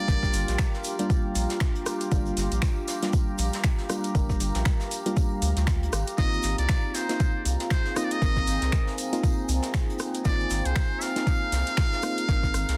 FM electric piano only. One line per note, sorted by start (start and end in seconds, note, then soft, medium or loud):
0.08 0.96 G3 medium
0.08 0.96 A#3 medium
0.08 0.96 D4 medium
0.08 0.96 A#4 medium
0.99 2.09 G3 medium
0.99 2.09 A#3 medium
0.99 2.09 D4 medium
0.99 2.09 F4 loud
2.11 2.99 G3 medium
2.11 2.99 A#3 medium
2.11 2.99 D4 medium
2.11 2.99 F4 loud
3.02 3.87 G3 medium
3.02 3.87 A#3 medium
3.02 3.87 D4 medium
3.02 3.87 F4 medium
3.89 4.12 G3 loud
3.89 4.12 A#3 medium
3.89 4.12 D4 medium
3.89 4.12 F4 loud
4.15 5.02 G3 medium
4.15 5.02 A#3 medium
4.15 5.02 D4 medium
4.15 5.02 A#4 medium
5.06 5.92 G3 loud
5.06 5.92 A#3 medium
5.06 5.92 D4 medium
5.06 5.92 F4 loud
6.18 7.06 A#3 medium
6.18 7.06 C4 medium
6.18 7.06 D#4 medium
6.18 7.06 F4 loud
7.09 7.94 A#3 medium
7.09 7.94 C4 medium
7.09 7.94 D#4 medium
7.09 7.94 F4 medium
7.96 8.19 A#3 medium
7.96 8.19 C4 medium
7.96 8.19 D#4 medium
7.96 8.19 F4 loud
8.22 9.09 A#3 medium
8.22 9.09 C4 medium
8.22 9.09 D#4 medium
8.22 9.09 A#4 medium
9.13 10.22 A#3 loud
9.13 10.23 C4 medium
9.13 10.23 D#4 medium
9.13 10.23 F4 loud
10.25 11.12 A#3 medium
10.25 11.13 C4 medium
10.25 11.13 D#4 medium
10.25 11.13 F4 loud
11.16 12.00 A#3 medium
11.16 12.00 C4 medium
11.16 12.01 D#4 medium
11.16 12.01 F4 medium
12.03 12.26 A#3 loud
12.03 12.26 C4 medium
12.03 12.26 D#4 medium
12.03 12.26 F4 loud
12.28 12.77 A#3 medium
12.28 12.77 C4 medium
12.28 12.77 D#4 medium
12.28 12.77 A#4 medium